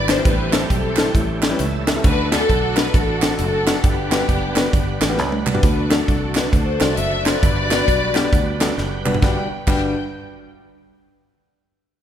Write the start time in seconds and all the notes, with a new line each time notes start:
Already playing: G#1 E3 G3 B3 D4 G4 B4 D5
0.08 E4 B4 C5, snare, clap, closed hi-hat
0.17 G3 B3 D4 E4 D5
0.24 A1 A2 E3 G3 A3 C4 E4 G4 B4, kick, closed hi-hat
0.52 G3 A3 C4 E4 A4, snare, clap, closed hi-hat
0.70 B1 C4 E4 A4, kick, closed hi-hat
0.96 G3 A3 C4 E4 A4, snare, clap, closed hi-hat
1.14 A1 A2 E3 G3 A3 C#4 G4, kick, closed hi-hat
1.42 E4 A4 G5, snare, clap, closed hi-hat
1.50 G3 A3 C#4 E4 B4
1.59 C#2 E4 A4 E5, closed hi-hat
1.86 E4 A4 B4 E5, snare, clap, closed hi-hat
1.96 G3 A3 C#4 E4 A4
2.03 D2 D3 A3 D4 F4 F#4 B4, kick, closed hi-hat
2.09 F#4
2.31 D4 F#4 A4, snare, clap, closed hi-hat
2.49 B1, kick, closed hi-hat
2.76 D4 F#4 B4, snare, clap, closed hi-hat
2.94 A1 D4 F#4 A4, kick, closed hi-hat
3.22 F#4 C5, snare, clap, closed hi-hat
3.30 D4 F#4 A4
3.38 F#1 D4 F#4 A4, closed hi-hat
3.67 F#4 B4, snare, clap, closed hi-hat
3.75 D4 F#4 A4
3.83 G1 G2 G3 B3 D4 G4 A4 F#5, kick, closed hi-hat
3.89 B4
4.11 G3 B3 D4 F#4 B4, snare, clap, closed hi-hat
4.29 F#1, kick, closed hi-hat
4.56 G3 B3 D4 F#4 B4, snare, clap, closed hi-hat
4.73 G1, kick, closed hi-hat
5.00 A1 F#4 A4 D5, snare, clap, closed hi-hat
5.09 G3 B3 D4 F#4 B4
5.18 C#2 F#5, snare
5.32 high tom
5.46 F#4 D5 A5, clap, mid tom
5.54 G3 B3 D4 F#4 B4, floor tom
5.63 D2 D3 A3 D4 F#4 B4, kick, closed hi-hat
5.90 D4 F#4 A4, snare, clap, closed hi-hat
6.08 C2, kick, closed hi-hat
6.35 D4 F#4 B4, snare, clap, closed hi-hat
6.53 D2 F#4 A4 C5, kick, closed hi-hat
6.80 C2 D4 F#4 C5 D5, snare, clap, closed hi-hat
6.96 F#1 E5, closed hi-hat
7.25 D4 F#4 B4 C5 D5, snare, clap, closed hi-hat
7.41 G1 G2 G3 B3 D4 F#4 B4, kick, closed hi-hat
7.71 G3 B3 D4 F#4 B4, snare, clap, closed hi-hat
7.88 B1, kick, closed hi-hat
8.15 G3 B3 D4 F#4 B4, snare, clap, closed hi-hat
8.33 D2, kick, closed hi-hat
8.60 G3 B3 D4 F#4 A4 D5, snare, clap, closed hi-hat
8.77 F#1 G5, snare
9.05 G3 B3 D4 F#4 B4 B5, clap, mid tom
9.14 floor tom
9.22 G1 G2 G3 D4 F#4 B4 G5, kick, snare, clap
9.67 G1 G2 G3 D4 F#4 B4 G5, kick, clap, crash